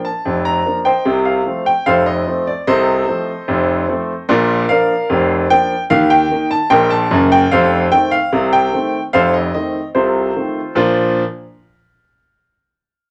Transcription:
0.05 A5
0.25 F1 F2
0.45 A#5
0.66 F3 A#3 D4
0.85 C5 D#5 G5
1.05 C2 C3
1.25 F5
1.46 F3 A3 C4
1.66 G5
1.86 F1 F2 A4 C5 F5
2.06 D#5
2.27 F3 A3 C4
2.47 D5
2.67 C2 C3 A4 C5 D#5
3.08 F3 A3 C4
3.48 F1 F2
3.88 F3 A3 C4
4.29 A#1 A#2 F4 A#4 D5
4.69 F3 A#3 D4 A#4 D5 F5
5.10 F1 F2
5.50 F3 A#3 D4 G5
5.90 D#2 D#3 F5
6.10 G5
6.31 D#3 A#3 D#4
6.51 A5
6.70 A#1 A#2 A#4 D#5 G5
6.90 A5
7.11 F#1 F#2
7.32 G5
7.51 F1 F2 A4 C5 F5
7.92 D#3 A3 C4 G5
8.11 F5
8.32 C2 C3
8.53 G5
8.73 D#3 A3 C4
9.13 F1 F2 A4 C5 F5
9.34 D#5
9.54 D#3 A3 C4 D#5
9.95 C2 C3 F4 A4 C5
10.36 D#3 A3 C4
10.75 A#2 F3 D4 F4 A#4

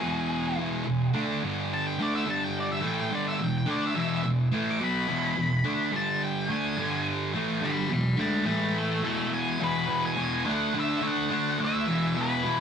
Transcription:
Already playing: G#4
0.01 E2 B2 E3
0.57 E2 B2 E3
0.85 E2 B2
1.14 D3 A3 D4
1.42 G2 D3 G3
1.74 A5
1.87 G5
1.99 D3 A3 D4 D5
2.15 E5
2.26 G2 D3 G3 A5
2.44 G5
2.60 D5
2.72 E5
2.82 A2 E3 A3
2.87 G5
3.01 G5
3.11 G2 D3 G3
3.15 D5
3.28 E5
3.40 E2 B2 G5
3.58 G5
3.66 D3 A3 D4
3.71 D5
3.87 E5
3.94 E2 B2 E3
3.99 E5
4.23 E2 B2
4.52 A2 E3 A3
4.71 D6
4.80 B2 F#3 B3
4.84 B5
5.07 E2 B2 E3
5.36 E2 B2
5.64 D3 A3 D4
5.91 G2 D3 G3
5.96 A5
6.24 G5
6.49 D3 A3 D4 G#5
6.77 G2 D3 G3
7.33 A2 E3 A3
7.61 G2 D3 G3 B5
7.66 D6
7.89 E2 B2 D6
7.94 B5
8.17 D3 A3 D4 G5 B5
8.44 A2 E3 A3 G5 B5
8.78 E5 A5
9.03 E2 B2 E3 E5 A5
9.34 G#5
9.60 E2 B2 E3 B4
9.88 E2 B2 E3
10.06 G#5
10.17 E2 B2 E3
10.45 D3 A3 D4
10.50 F#5
10.74 D3 A3 D4
10.79 E5
11.01 D3 A3 D4
11.07 F#5
11.30 D3 A3 D4
11.59 D3 A3 D4
11.64 E5
11.86 E2 B2 E3
12.16 E2 B2 E3
12.21 B4
12.43 E2 B2 E3

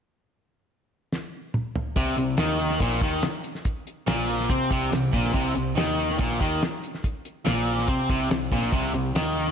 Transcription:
1.13 snare
1.54 mid tom
1.76 floor tom
1.96 C2 C3, kick, closed hi-hat
2.16 C2 C3, closed hi-hat
2.37 D#2 D#3, snare, closed hi-hat, tambourine
2.59 closed hi-hat
2.70 snare
2.80 A#1 A#2, kick, closed hi-hat
3.01 D#2 D#3, kick, closed hi-hat
3.22 snare, closed hi-hat, tambourine
3.44 closed hi-hat
3.55 snare
3.65 kick, closed hi-hat
3.87 closed hi-hat
4.07 A#1 A#2, snare, closed hi-hat, tambourine
4.29 closed hi-hat
4.40 snare
4.50 C3 C4, kick, closed hi-hat
4.71 C2 C3, kick, closed hi-hat
4.92 C2 C3, snare, closed hi-hat, tambourine
5.13 A#1 A#2, kick, closed hi-hat
5.25 snare
5.34 C2 C3, kick, closed hi-hat
5.55 C2 C3, closed hi-hat
5.77 D#2 D#3, snare, closed hi-hat, tambourine
5.99 closed hi-hat
6.10 snare
6.19 A#1 A#2, kick, closed hi-hat
6.41 D#2 D#3, kick, closed hi-hat
6.62 snare, closed hi-hat, tambourine
6.84 closed hi-hat
6.95 snare
7.04 kick, closed hi-hat
7.25 closed hi-hat
7.45 A#1 A#2, snare, closed hi-hat, tambourine
7.67 closed hi-hat
7.79 snare
7.88 C3 C4, kick, closed hi-hat
8.10 C2 C3, kick, closed hi-hat
8.31 C2 C3, snare, closed hi-hat, tambourine
8.52 A#1 A#2, kick, closed hi-hat
8.63 snare
8.72 C2 C3, kick, closed hi-hat
8.93 C2 C3, closed hi-hat
9.15 D#2 D#3, snare, closed hi-hat, tambourine
9.36 closed hi-hat
9.47 snare

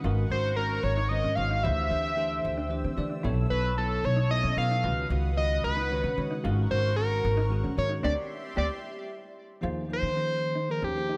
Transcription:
Already playing: F#5
0.04 G#1 D#3 G#3 C#4 F4 F#4 A#4 C#6
0.30 G#1 D#3 G#3 C#4 F#4 A#4 C5
0.56 D#3 G#3 C#4 F#4 A#4 C#5
0.83 G#1 C#5
0.97 D#4
1.09 D#3 G#3 C#4 F#4 C5 D#5
1.24 G#2 C#4
1.35 G#1 D#3 G#3 C#4 F#4 C5 F5
1.51 D#4
1.63 D2 E3 A3 D4 E4 G4 C5 E5 G5 E6
1.89 D2 E3 A3 D4 G4 C5
2.16 E3 A3 D4 G4 A4
2.45 D2
2.58 D4
2.69 E3 A3 D4 G4 C5
2.84 D3 C4
2.96 D3 E3 A3 D4 G4 D5
3.10 D4
3.23 B1 F#3 B3 E4 A4 C#5 A5
3.49 B1 F#3 B3 E4 A4 B4 C#5
3.77 F#3 B3 E4 A4 C#5
4.04 B1 C#5
4.16 D#4
4.30 F#3 B3 E4 A4 D#5 E5
4.43 B2 C#4
4.56 B2 F#3 B3 E4 A4 B4 F5
4.71 D#4
4.83 C#2 D#3 G#3 C#4 F4 F#4 B4 F#5 D#6
5.10 C#2 D#3 G#3 C#4 F#4 B4
5.36 D#3 G#3 C#4 F#4 B4 D#5
5.64 C#2 B4
5.77 D#4
5.90 D#3 G#3 C#4 F#4 C#5
6.03 C#3 C#4
6.16 C#3 D#3 G#3 C#4 F#4 C#5
6.31 D#4
6.43 G#1 D#3 G#3 C#4 F4 F#4 A#4 C#6
6.70 G#1 D#3 G#3 C#4 F#4 A#4 C5
6.96 D#3 G#3 C#4 F#4 A#4
7.25 G#1
7.37 D#4
7.49 D#3 G#3 C#4 F#4 G#4
7.64 G#2 C#4
7.76 G#2 D#3 G#3 C#4 F#4 C#5
7.89 D#4
8.03 D2 A3 C4 D4 G4 D5 E5 C6
8.56 D2 A3 C4 D4 G4 D5
9.61 D#2 F3 A#3 D#4 F4 G#4 C5
9.89 F3 A#3 D#4 G#4 C5
9.93 C5
10.03 D#3
10.15 F3 A#3 C#4 D#4 G#4
10.55 D#4
10.69 F3 A#3 D#4 G#4 A#4 C5
10.82 D#2 C#4 G4
10.95 F3 A#3 D#4 G#4 C5
11.09 D#4

